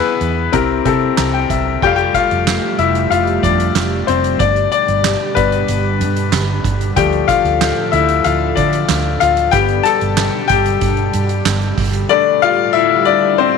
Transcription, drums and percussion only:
0.21 closed hi-hat
0.53 kick, closed hi-hat
0.85 kick, closed hi-hat
1.18 snare, clap, closed hi-hat
1.50 kick, closed hi-hat
1.82 kick, crash
1.98 closed hi-hat
2.14 kick, snare, closed hi-hat
2.31 closed hi-hat
2.47 snare, clap, closed hi-hat
2.79 closed hi-hat
2.95 closed hi-hat
3.12 closed hi-hat
3.27 closed hi-hat
3.43 kick, closed hi-hat
3.60 closed hi-hat
3.75 snare, clap, closed hi-hat
4.08 closed hi-hat
4.24 closed hi-hat
4.40 kick, closed hi-hat
4.56 closed hi-hat
4.72 closed hi-hat
4.88 closed hi-hat
5.04 snare, clap, closed hi-hat
5.37 kick, closed hi-hat
5.52 closed hi-hat
5.68 closed hi-hat
6.01 closed hi-hat
6.16 closed hi-hat
6.32 snare, clap, closed hi-hat
6.64 kick, closed hi-hat
6.81 closed hi-hat
6.97 kick, closed hi-hat
7.13 closed hi-hat
7.28 kick, snare, closed hi-hat
7.45 closed hi-hat
7.61 snare, clap, closed hi-hat
7.93 closed hi-hat
8.08 closed hi-hat
8.24 closed hi-hat
8.57 kick, closed hi-hat
8.73 closed hi-hat
8.89 snare, clap, closed hi-hat
9.21 closed hi-hat
9.37 closed hi-hat
9.52 kick, closed hi-hat
9.69 closed hi-hat
9.85 snare, closed hi-hat
10.01 closed hi-hat
10.17 snare, clap, closed hi-hat
10.49 kick, closed hi-hat
10.66 closed hi-hat
10.81 kick, closed hi-hat
10.97 closed hi-hat
11.13 closed hi-hat
11.29 closed hi-hat
11.46 snare, clap, closed hi-hat
11.62 closed hi-hat
11.78 kick, open hi-hat
11.93 closed hi-hat

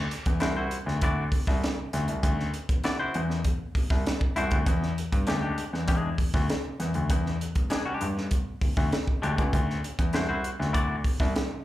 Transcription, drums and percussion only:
0.11 closed hi-hat
0.26 kick, closed hi-hat
0.40 snare, closed hi-hat
0.71 closed hi-hat
0.88 snare
1.01 kick, closed hi-hat
1.32 kick, open hi-hat
1.47 kick, snare
1.64 snare, closed hi-hat
1.93 snare, closed hi-hat
2.08 closed hi-hat
2.23 kick, closed hi-hat
2.40 snare
2.54 closed hi-hat
2.69 kick, closed hi-hat
2.84 snare, closed hi-hat
3.14 closed hi-hat
3.30 snare
3.44 kick, closed hi-hat
3.75 kick, open hi-hat
3.90 kick, snare
4.06 snare, closed hi-hat
4.21 kick
4.36 closed hi-hat
4.51 kick, closed hi-hat
4.66 kick, closed hi-hat
4.83 snare
4.98 closed hi-hat
5.13 kick, closed hi-hat
5.27 snare, closed hi-hat
5.58 closed hi-hat
5.74 snare
5.88 kick, closed hi-hat
6.18 kick, open hi-hat
6.34 kick, snare
6.50 snare, closed hi-hat
6.80 snare, closed hi-hat
6.94 closed hi-hat
7.10 kick, closed hi-hat
7.26 snare
7.41 closed hi-hat
7.55 kick, closed hi-hat
7.70 snare, closed hi-hat
8.01 closed hi-hat
8.18 snare
8.31 kick, closed hi-hat
8.62 kick, open hi-hat
8.77 kick, snare
8.92 snare, closed hi-hat
9.08 kick
9.23 closed hi-hat
9.38 kick, closed hi-hat
9.53 kick, closed hi-hat
9.70 snare
9.84 closed hi-hat
9.99 kick, closed hi-hat
10.13 snare, closed hi-hat
10.44 closed hi-hat
10.61 snare
10.74 kick, closed hi-hat
11.04 kick, open hi-hat
11.20 kick, snare
11.36 snare, closed hi-hat

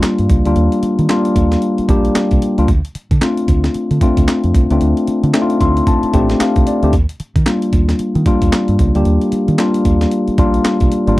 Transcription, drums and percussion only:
0.03 snare, clap, closed hi-hat
0.19 closed hi-hat
0.29 kick, closed hi-hat
0.45 closed hi-hat
0.56 closed hi-hat
0.72 closed hi-hat
0.83 closed hi-hat
0.99 closed hi-hat
1.09 snare, clap, closed hi-hat
1.25 closed hi-hat
1.36 kick, closed hi-hat
1.52 snare, closed hi-hat
1.62 closed hi-hat
1.78 closed hi-hat
1.89 kick, closed hi-hat
2.05 closed hi-hat
2.15 snare, clap, closed hi-hat
2.31 kick, closed hi-hat
2.42 closed hi-hat
2.58 closed hi-hat
2.68 kick, closed hi-hat
2.85 closed hi-hat
2.95 closed hi-hat
3.11 kick, closed hi-hat
3.21 snare, clap, closed hi-hat
3.37 closed hi-hat
3.48 kick, closed hi-hat
3.64 snare, closed hi-hat
3.74 closed hi-hat
3.91 closed hi-hat
4.01 kick, closed hi-hat
4.17 kick, closed hi-hat
4.28 snare, clap, closed hi-hat
4.44 closed hi-hat
4.55 kick, closed hi-hat
4.70 closed hi-hat
4.81 closed hi-hat
4.97 closed hi-hat
5.07 closed hi-hat
5.23 closed hi-hat
5.34 snare, clap, closed hi-hat
5.50 closed hi-hat
5.61 kick, closed hi-hat
5.77 closed hi-hat
5.87 kick, closed hi-hat
6.03 closed hi-hat
6.13 kick, closed hi-hat
6.29 snare, closed hi-hat
6.40 snare, clap, closed hi-hat
6.56 kick, closed hi-hat
6.67 closed hi-hat
6.83 closed hi-hat
6.93 kick, closed hi-hat
7.09 closed hi-hat
7.20 closed hi-hat
7.36 kick, closed hi-hat
7.46 snare, clap, closed hi-hat
7.62 closed hi-hat
7.73 kick, closed hi-hat
7.89 snare, closed hi-hat
7.99 closed hi-hat
8.15 closed hi-hat
8.26 kick, closed hi-hat
8.42 kick, closed hi-hat
8.52 snare, clap, closed hi-hat
8.68 closed hi-hat
8.79 kick, closed hi-hat
8.95 closed hi-hat
9.05 closed hi-hat
9.21 closed hi-hat
9.32 closed hi-hat
9.48 closed hi-hat
9.58 snare, clap, closed hi-hat
9.74 closed hi-hat
9.85 kick, closed hi-hat
10.01 snare, closed hi-hat
10.11 closed hi-hat
10.28 closed hi-hat
10.38 kick, closed hi-hat
10.54 closed hi-hat
10.65 snare, clap, closed hi-hat
10.80 kick, closed hi-hat
10.92 closed hi-hat
11.07 closed hi-hat

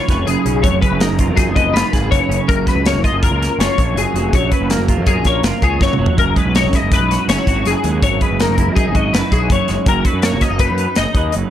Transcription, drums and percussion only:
0.09 kick, snare, closed hi-hat
0.27 closed hi-hat
0.46 closed hi-hat
0.64 kick, closed hi-hat
0.82 kick, closed hi-hat
1.00 snare, closed hi-hat
1.19 kick, closed hi-hat
1.37 kick, snare, closed hi-hat
1.56 kick, closed hi-hat
1.76 snare, closed hi-hat
1.93 kick, snare, closed hi-hat
2.12 kick, closed hi-hat
2.32 closed hi-hat
2.49 kick, closed hi-hat
2.67 kick, snare, closed hi-hat
2.86 snare, closed hi-hat
3.04 kick, closed hi-hat
3.23 kick, closed hi-hat
3.42 snare, closed hi-hat
3.60 snare, closed hi-hat
3.78 kick, closed hi-hat
3.97 closed hi-hat
4.16 closed hi-hat
4.33 kick, closed hi-hat
4.52 kick, closed hi-hat
4.70 snare, closed hi-hat
4.88 kick, closed hi-hat
5.06 kick, closed hi-hat
5.25 kick, snare, closed hi-hat
5.43 snare, closed hi-hat
5.62 kick, closed hi-hat
5.81 kick, snare
5.93 mid tom
6.06 floor tom
6.18 kick, closed hi-hat
6.36 kick, closed hi-hat
6.55 snare, closed hi-hat
6.73 kick, snare, closed hi-hat
6.92 kick, snare, closed hi-hat
7.11 snare, closed hi-hat
7.29 snare, closed hi-hat
7.47 kick, closed hi-hat
7.65 snare, closed hi-hat
7.84 closed hi-hat
8.03 kick, closed hi-hat
8.21 kick, closed hi-hat
8.40 snare, closed hi-hat
8.58 kick, closed hi-hat
8.77 kick, closed hi-hat
8.95 kick, closed hi-hat
9.14 snare, closed hi-hat
9.32 kick, closed hi-hat
9.50 kick, closed hi-hat
9.68 snare, closed hi-hat
9.86 kick, closed hi-hat
10.05 kick, closed hi-hat
10.22 snare, closed hi-hat
10.41 kick, snare, closed hi-hat
10.59 kick, closed hi-hat
10.78 closed hi-hat
10.95 snare, closed hi-hat
11.15 kick, closed hi-hat
11.32 closed hi-hat

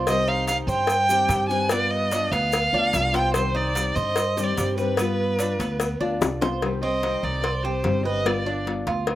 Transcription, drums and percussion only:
0.07 cowbell, maracas
0.47 cowbell, maracas
0.69 maracas
0.87 cowbell, maracas
1.09 maracas
1.29 cowbell, maracas
1.50 maracas
1.69 cowbell, maracas
2.11 cowbell, maracas
2.33 cowbell, maracas
2.52 cowbell, maracas
2.93 cowbell, maracas
3.14 cowbell, maracas
3.34 cowbell, maracas
3.75 cowbell, maracas
3.96 maracas
4.16 cowbell, maracas
4.38 maracas
4.57 cowbell, maracas
4.78 maracas
4.97 cowbell, maracas
5.39 cowbell, maracas
5.60 cowbell, maracas
5.80 cowbell, maracas
6.22 cowbell, high bongo, maracas
6.42 cowbell, low bongo, maracas
6.62 cowbell
7.03 cowbell
7.44 cowbell
7.84 cowbell
8.26 cowbell
8.67 cowbell
8.87 cowbell
9.07 cowbell

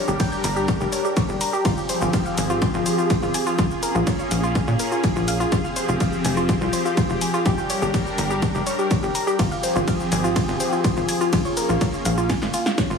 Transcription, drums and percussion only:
0.08 shaker
0.20 kick, ride, shaker
0.32 shaker
0.44 open hi-hat, shaker
0.56 shaker
0.68 kick, ride, shaker
0.81 shaker
0.92 open hi-hat, shaker
1.05 shaker
1.17 kick, ride, shaker
1.29 shaker
1.41 open hi-hat, shaker
1.53 shaker
1.65 kick, ride, shaker
1.77 shaker
1.89 open hi-hat, shaker
2.01 shaker
2.13 kick, ride, shaker
2.26 shaker
2.38 open hi-hat, shaker
2.50 shaker
2.62 kick, ride, shaker
2.74 shaker
2.86 open hi-hat, shaker
2.98 shaker
3.10 kick, ride, shaker
3.22 shaker
3.34 open hi-hat, shaker
3.47 shaker
3.59 kick, ride, shaker
3.71 shaker
3.83 open hi-hat, shaker
3.95 shaker
4.07 kick, ride, shaker
4.19 shaker
4.31 open hi-hat, shaker
4.43 shaker
4.55 kick, ride, shaker
4.68 shaker
4.79 open hi-hat, shaker
4.92 shaker
5.04 kick, ride, shaker
5.16 shaker
5.28 open hi-hat, shaker
5.40 shaker
5.52 kick, ride, shaker
5.64 shaker
5.76 open hi-hat, shaker
5.88 shaker
6.00 kick, ride, shaker
6.13 shaker
6.25 open hi-hat, shaker
6.37 shaker
6.49 kick, ride, shaker
6.61 shaker
6.73 open hi-hat, shaker
6.85 shaker
6.97 kick, ride, shaker
7.10 shaker
7.21 open hi-hat, shaker
7.34 shaker
7.46 kick, ride, shaker
7.58 shaker
7.70 open hi-hat, shaker
7.82 shaker
7.94 kick, ride, shaker
8.06 shaker
8.18 open hi-hat, shaker
8.30 shaker
8.42 kick, ride, shaker
8.55 shaker
8.67 open hi-hat, shaker
8.79 shaker
8.91 kick, ride, shaker
9.03 shaker
9.15 open hi-hat, shaker
9.27 shaker
9.39 kick, ride, shaker
9.52 shaker
9.63 open hi-hat, shaker
9.76 shaker
9.88 kick, ride, shaker
10.00 shaker
10.12 open hi-hat, shaker
10.24 shaker
10.36 kick, ride, shaker
10.48 shaker
10.60 open hi-hat, shaker
10.73 shaker
10.84 kick, ride, shaker
10.97 shaker
11.09 open hi-hat, shaker
11.21 shaker
11.33 kick, ride, shaker
11.45 shaker
11.57 open hi-hat, shaker
11.69 shaker
11.81 kick, ride, shaker
11.93 shaker
12.05 open hi-hat, shaker
12.18 shaker
12.30 kick, snare, ride, shaker
12.42 snare, shaker
12.54 open hi-hat, shaker
12.66 snare, shaker
12.78 kick, snare, ride, shaker
12.90 shaker

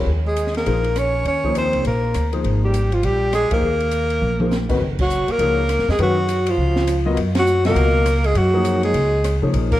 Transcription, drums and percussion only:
0.36 hi-hat pedal, ride
0.47 snare
0.54 snare, ride
0.66 ride
0.84 ride
0.96 cross-stick, hi-hat pedal, ride
1.25 ride
1.44 kick
1.55 hi-hat pedal, ride
1.73 ride
1.85 ride
2.14 cross-stick, hi-hat pedal, ride
2.33 ride
2.44 ride
2.74 hi-hat pedal, ride
2.92 ride
3.03 ride
3.33 cross-stick, hi-hat pedal, ride
3.51 kick, ride
3.80 ride
3.91 hi-hat pedal, ride
4.10 ride
4.22 mid tom
4.40 mid tom
4.51 snare, hi-hat pedal
4.69 kick, crash
4.99 kick, crash
5.10 hi-hat pedal
5.28 ride
5.39 ride
5.69 cross-stick, hi-hat pedal, ride
5.79 snare
5.89 snare
5.99 ride
6.29 hi-hat pedal, ride
6.46 ride
6.76 snare
6.87 cross-stick, hi-hat pedal, ride
7.17 ride
7.35 snare, ride
7.47 hi-hat pedal
7.65 snare, ride
7.76 ride
8.06 cross-stick, hi-hat pedal, ride
8.24 ride
8.35 ride
8.65 hi-hat pedal, ride
8.83 ride
8.94 ride
9.24 cross-stick, hi-hat pedal, ride
9.54 ride
9.72 kick, crash

